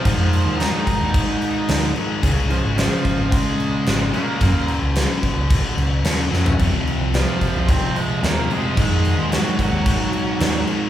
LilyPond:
<<
  \new Staff \with { instrumentName = "Lead electric guitar" } { \time 4/4 \key aes \mixolydian \tempo 4 = 110 <f f'>4 <ees' ees''>8 <ees' ees''>2 r8 | r8 <f f'>8 <f f'>4 <aes aes'>4. <bes bes'>8~ | <bes bes'>8 r2. r8 | r4 <f f'>4 <c' c''>8 <aes aes'>8 <bes bes'>8 <aes aes'>8 |
<aes aes'>4 <ges ges'>8 <ges ges'>2 r8 | }
  \new Staff \with { instrumentName = "Distorted electric guitar" } { \clef bass \time 4/4 \key aes \mixolydian <aes, ees aes>2.~ <aes, ees aes>8 <aes, ees aes>8 | <des aes des'>2.~ <des aes des'>8 <des aes des'>8 | <ges, des ges>2.~ <ges, des ges>8 <ges, des ges>8 | <f, c f>2.~ <f, c f>8 <f, c f>8 |
<aes, ees aes>2.~ <aes, ees aes>8 <aes, ees aes>8 | }
  \new Staff \with { instrumentName = "Distorted electric guitar" } { \clef bass \time 4/4 \key aes \mixolydian r1 | r1 | r1 | <f, c f>2~ <f, c f>8 <f, c f>8 <f, c f>4 |
<aes, ees aes>2~ <aes, ees aes>8 <aes, ees aes>8 <aes, ees aes>4 | }
  \new Staff \with { instrumentName = "Picked electric bass" } { \clef bass \time 4/4 \key aes \mixolydian aes,16 f,8 ees,8 r8 ees,8 r8. d,8 r8 | des,16 c,8 aes,,8 r8 aes,,8 r8. aes,,8 r8 | ges,16 ees,8 des,8 r8 des,8 r16 des,8 ees,8 f,8 | f,16 ees,8 c,8 r8 c,8 r8. ees,8 r8 |
aes,16 f,8 ees,8 r8 ees,8 r8. ees,8 r8 | }
  \new DrumStaff \with { instrumentName = "Drums" } \drummode { \time 4/4 <cymc bd>8 cymc8 <cymc sn>8 <cymc bd>8 <cymc bd>8 cymc8 <cymc sn>8 cymc8 | <cymc bd>8 cymc8 <cymc sn>8 <cymc bd>8 <cymc bd>8 cymc8 <cymc sn>8 cymc8 | <cymc bd>8 cymc8 <cymc sn>8 <cymc bd>8 <cymc bd>8 cymc8 <cymc sn>8 sn16 tomfh16 | <cymc bd>8 cymc8 <cymc sn>8 <cymc bd>8 <cymc bd>8 cymc8 <cymc sn>8 cymc8 |
<cymc bd>8 cymc8 <cymc sn>8 <cymc bd>8 <cymc bd>8 cymc8 <cymc sn>8 cymc8 | }
>>